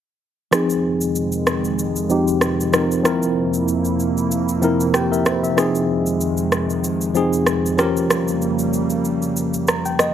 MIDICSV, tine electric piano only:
0, 0, Header, 1, 2, 480
1, 0, Start_track
1, 0, Key_signature, -4, "minor"
1, 0, Tempo, 631579
1, 399, Time_signature, 4, 2, 24, 8
1, 7706, End_track
2, 0, Start_track
2, 0, Title_t, "Tine electric piano"
2, 0, Program_c, 0, 4
2, 390, Note_on_c, 0, 53, 79
2, 396, Note_on_c, 0, 60, 77
2, 401, Note_on_c, 0, 63, 72
2, 408, Note_on_c, 0, 68, 90
2, 531, Control_c, 0, 64, 127
2, 1034, Note_off_c, 0, 53, 0
2, 1037, Note_off_c, 0, 60, 0
2, 1040, Note_off_c, 0, 63, 0
2, 1044, Note_off_c, 0, 68, 0
2, 1588, Note_on_c, 0, 53, 78
2, 1594, Note_on_c, 0, 60, 73
2, 1601, Note_on_c, 0, 63, 76
2, 1607, Note_on_c, 0, 67, 88
2, 1917, Note_off_c, 0, 53, 0
2, 1920, Note_off_c, 0, 60, 0
2, 1923, Note_off_c, 0, 63, 0
2, 1926, Note_off_c, 0, 67, 0
2, 2068, Note_on_c, 0, 53, 78
2, 2075, Note_on_c, 0, 60, 67
2, 2081, Note_on_c, 0, 63, 69
2, 2088, Note_on_c, 0, 70, 82
2, 2240, Note_off_c, 0, 53, 0
2, 2243, Note_off_c, 0, 60, 0
2, 2246, Note_off_c, 0, 63, 0
2, 2249, Note_off_c, 0, 70, 0
2, 2306, Note_on_c, 0, 53, 86
2, 2312, Note_on_c, 0, 60, 72
2, 2320, Note_on_c, 0, 64, 77
2, 2326, Note_on_c, 0, 70, 93
2, 2327, Control_c, 0, 64, 0
2, 2458, Control_c, 0, 64, 127
2, 2953, Note_off_c, 0, 53, 0
2, 2956, Note_off_c, 0, 60, 0
2, 2960, Note_off_c, 0, 64, 0
2, 2963, Note_off_c, 0, 70, 0
2, 3507, Note_on_c, 0, 53, 79
2, 3513, Note_on_c, 0, 60, 74
2, 3520, Note_on_c, 0, 64, 75
2, 3526, Note_on_c, 0, 70, 93
2, 3758, Note_on_c, 0, 67, 64
2, 3758, Note_on_c, 0, 79, 69
2, 3762, Note_off_c, 0, 70, 0
2, 3836, Note_off_c, 0, 53, 0
2, 3839, Note_off_c, 0, 60, 0
2, 3842, Note_off_c, 0, 64, 0
2, 3881, Note_off_c, 0, 79, 0
2, 3884, Note_off_c, 0, 67, 0
2, 3889, Note_on_c, 0, 70, 68
2, 3889, Note_on_c, 0, 76, 65
2, 3993, Note_off_c, 0, 70, 0
2, 3998, Note_on_c, 0, 72, 66
2, 4121, Note_off_c, 0, 76, 0
2, 4124, Note_off_c, 0, 72, 0
2, 4130, Note_on_c, 0, 76, 61
2, 4227, Note_on_c, 0, 53, 84
2, 4234, Note_on_c, 0, 60, 77
2, 4240, Note_on_c, 0, 63, 76
2, 4247, Control_c, 0, 64, 0
2, 4247, Note_on_c, 0, 68, 95
2, 4358, Note_off_c, 0, 76, 0
2, 4364, Control_c, 0, 64, 127
2, 4873, Note_off_c, 0, 53, 0
2, 4876, Note_off_c, 0, 60, 0
2, 4880, Note_off_c, 0, 63, 0
2, 4883, Note_off_c, 0, 68, 0
2, 5429, Note_on_c, 0, 53, 83
2, 5435, Note_on_c, 0, 60, 74
2, 5442, Note_on_c, 0, 63, 73
2, 5448, Note_on_c, 0, 68, 87
2, 5757, Note_off_c, 0, 53, 0
2, 5760, Note_off_c, 0, 60, 0
2, 5764, Note_off_c, 0, 63, 0
2, 5767, Note_off_c, 0, 68, 0
2, 5909, Note_on_c, 0, 53, 85
2, 5916, Note_on_c, 0, 61, 77
2, 5921, Note_on_c, 0, 67, 78
2, 5928, Note_on_c, 0, 70, 97
2, 5929, Control_c, 0, 64, 0
2, 6051, Control_c, 0, 64, 127
2, 6687, Note_off_c, 0, 53, 0
2, 6690, Note_off_c, 0, 61, 0
2, 6693, Note_off_c, 0, 67, 0
2, 6696, Note_off_c, 0, 70, 0
2, 7359, Note_on_c, 0, 82, 61
2, 7484, Note_off_c, 0, 82, 0
2, 7490, Note_on_c, 0, 79, 65
2, 7593, Note_off_c, 0, 79, 0
2, 7596, Note_on_c, 0, 75, 74
2, 7706, Note_off_c, 0, 75, 0
2, 7706, End_track
0, 0, End_of_file